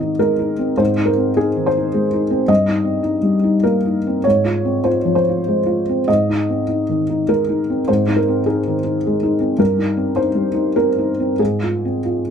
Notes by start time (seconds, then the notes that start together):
Already playing: G#2 D#3 C4 D#5
0.00 D#4
0.19 G#3 A#4
0.39 D#4
0.59 C4
0.78 G#2 C5
0.98 D#4
1.06 A#4
1.17 C4
1.37 D#4 G#4
1.57 D#3
1.66 C5
1.77 D#4
1.94 G#3
2.13 D#4
2.30 C4
2.48 G2 D#5
2.68 D#4
2.85 C4
3.03 D#4
3.23 G3
3.44 D#4
3.63 A#3 A#4
3.86 D#4
4.07 C4
4.24 G#2 C#5
4.45 F4
4.65 C4
4.84 F4 C5
5.05 F3
5.15 C5
5.29 F4
5.48 G#3
5.66 F4
5.89 C4
6.08 G#2 D#5
6.29 D#4
6.50 C4
6.68 D#4
6.89 D#3
7.10 D#4
7.28 G#3 A#4
7.49 D#4
7.70 C4
7.88 G#2 C5
8.08 D#4
8.16 A#4
8.28 C4
8.46 D#4 G#4
8.67 D#3
8.84 D#4
9.07 G#3
9.23 D#4
9.40 C4
9.59 G2 A#4
9.78 D#4
9.97 C4
10.16 D#4 C5
10.35 G3
10.54 D#4
10.76 C4 A#4
10.98 D#4
11.20 C4
11.39 G#2 G#4
11.63 F4
11.85 C4
12.05 F4